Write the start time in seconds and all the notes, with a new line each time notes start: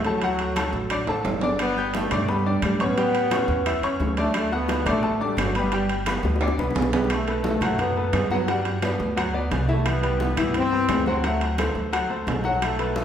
Already playing: D2
0.04 F#3 A3 A4 A5, high conga, high timbale
0.22 F#3 F#4 F#5, high conga, high timbale
0.39 high conga, high timbale
0.56 A3 A4 A5, high conga, high timbale, claves
0.73 A1, high conga
0.90 D4 D5 D6, high conga, high timbale, claves
1.07 A1 A3 A4 A5, high conga, high timbale
1.24 G1, high conga, high timbale
1.41 D4 D5 D6, low timbale
1.59 B3, high bongo, high conga, high timbale, claves
1.77 G4 G5 G6, high conga
1.94 A3, high bongo, high conga, high timbale
2.11 G2 D4 D5 D6, high bongo, high conga, low conga, high timbale, claves
2.28 G3 B3 B4 B5, high bongo, high conga
2.46 D4 D5 D6, high bongo, high conga
2.62 A2 G3, high bongo, low bongo, high conga, high timbale, claves
2.80 B3 C#4 C#5 C#6, high bongo, high timbale
2.97 G3 G4 G5, high bongo, high conga, high timbale
3.14 high conga, high timbale
3.31 C#4 C#5 C#6, high bongo, high conga, high timbale, claves
3.48 E2, high bongo, high conga
3.66 E4 E5 E6, high bongo, high conga, high timbale, claves
3.82 E2 C#4 C#5 C#6, high bongo, high conga, high timbale
4.00 D2, high bongo, low bongo, high conga
4.17 A3 D4 D5 D6, high bongo, high conga, high timbale
4.34 A3, high bongo, high conga, high timbale, claves
4.52 B3 F#4 F#5 F#6, high conga
4.69 high bongo, high conga, high timbale
4.86 A1 A3 D4 D5 D6, high bongo, high conga, low conga, high timbale, claves
5.03 A3 A4 A5, high bongo, high conga
5.21 G3 D4 D5 D6, high bongo, high conga
5.37 G1, high bongo, low bongo, high conga, high timbale, low timbale, claves
5.41 F#3
5.55 G3 B3 B4 B5, high bongo, high timbale
5.72 G3 G4 G5, high bongo, high conga, high timbale
5.89 high conga, high timbale
6.06 B3 B4 B5, high bongo, high conga, high timbale, claves
6.23 D2, high bongo, high conga
6.36 high bongo
6.41 D4 D5 D6, high conga, high timbale, claves
6.48 high bongo
6.58 C2 B3 B4 B5, low bongo, high conga
6.71 low bongo
6.75 B1, high conga, low timbale
6.82 low bongo
6.93 G3 B3 B4 B5, low bongo, low timbale
7.04 low bongo
7.10 A3, high bongo, high conga, high timbale, claves
7.26 A3 A4 B4, high bongo, high conga, high timbale
7.44 A3, high bongo, high conga, low timbale
7.61 F#2 F#3 F#4 F#5, low conga, high timbale, claves
7.78 B3, high bongo, high conga, low conga, high timbale
7.96 A3 A4 B4, high conga
8.13 G2, high bongo, low bongo, high conga, high timbale, low timbale, claves
8.31 F#3 B3 F#4 F#5, high bongo, high conga
8.48 G3 F#4 F#5, high bongo, high conga, high timbale
8.65 high bongo, high conga, high timbale
8.82 B3 B4 D5, high bongo, high conga, high timbale, low timbale, claves
9.00 D2, high bongo, high conga
9.16 F#3 F#4 F#5, high bongo, high conga, high timbale, claves
9.34 B3 B4 D5, high conga
9.51 C2, high bongo, low bongo, high conga, high timbale, low timbale
9.68 E3 A3 E4 E5, high bongo, high conga
9.86 B3, high bongo, high conga, high timbale, claves
10.03 G3 G4 B4, high bongo, high conga, high timbale
10.20 B3, high bongo, high conga, low timbale
10.37 G2 E3 E4 E5, high bongo, low conga, high timbale, claves
10.54 C4, high bongo, high conga, high timbale
10.72 G3 G4 B4, high conga
10.89 D2, high bongo, low bongo, high conga, high timbale, low timbale, claves
11.06 F#3 C4 F#4 F#5, high bongo, high conga
11.24 F#3 A3 F#4 F#5, high bongo, high conga, high timbale
11.41 high bongo, high conga, high timbale
11.58 A3 A4 C5, high bongo, high conga, high timbale, low timbale, claves
11.75 D2, high bongo, high conga
11.92 F#3 F#4 F#5, high bongo, high conga, high timbale, claves
12.10 A3 A4 C5, high conga
12.27 B1, high bongo, low bongo, high conga, high timbale, low timbale
12.44 F#3 F#4 F#5, high bongo, high conga
12.62 A3, high bongo, high conga, high timbale, claves
12.79 A3 A4 B4, high bongo, high conga, high timbale
12.96 A3, high bongo, high conga, low timbale